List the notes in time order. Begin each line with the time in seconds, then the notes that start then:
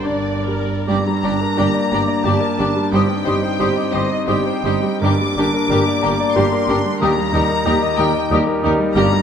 Already playing: G2 D3 G3 D4 A#4 D5
0.04 G1 G2 D4 D5
0.47 G3 A#4 D5
0.87 G1 G2 G3 A#3 D4 G4 D5 A#5 D6
1.07 G3
1.24 G1 G2 G3 D4 G4 D5 D6
1.41 A#4
1.58 G1 G2 G3 D4 G4 D5 D6
1.74 D5
1.92 G1 G2 G3 D4 G4 D5 A#5 D6
2.08 D5
2.24 G1 G2 G3 D4 G4 D5 A5 D6
2.40 A#4
2.59 G1 G2 G3 D4 G4 D5 D6
2.76 G3
2.91 G1 G2 G3 C4 D#4 G4 C5 G5 D#6
3.09 G3
3.24 G1 G2 G3 D#4 G4 C5 D#6
3.42 C5
3.59 G1 G2 G3 D#4 G4 C5 D#6
3.76 D#5
3.92 G1 G2 G3 D#4 G4 C5 D#5 C6 D#6
3.96 G3
4.12 D#5
4.27 G1 G2 G3 D#4 G4 C5 G5 D#6
4.31 G3
4.47 C5
4.64 G1 G2 G3 D#4 G4 C5 D#6
4.83 G3
5.00 G1 G2 G3 A#3 D4 G4 A#4 D6
5.21 G3
5.37 G1 G2 G3 D4 G4 A#4 D6
5.54 A#4
5.69 G1 G2 G3 D4 G4 A#4 D6
5.87 D5
6.03 G1 G2 G3 D4 G4 A#4 A#5 D6
6.20 D5
6.35 G1 G2 G3 D4 G4 A#4 C6 D6
6.53 A#4
6.67 G1 G2 G3 D4 G4 A#4 D6
6.85 G3
7.00 D#2 G3 D#4 G4 A#4 A#5 D#6
7.17 G3
7.33 D#2 G3 D#4 G4 A#4 D#6
7.49 A#4
7.65 D#2 G3 D#4 G4 A#4 D#6
7.83 D#5
7.97 D#2 G3 D#4 G4 A#4 G5 A#5 D#6
8.14 D#5
8.31 D#2 G3 D#4 G4 A#4 D#6
8.47 A#4
8.62 D#2 G3 D#4 G4 A#4 D#6
8.79 G3
8.95 G1 G2 G3 F4 G4 A#4 D5 A#5 F6
9.12 G3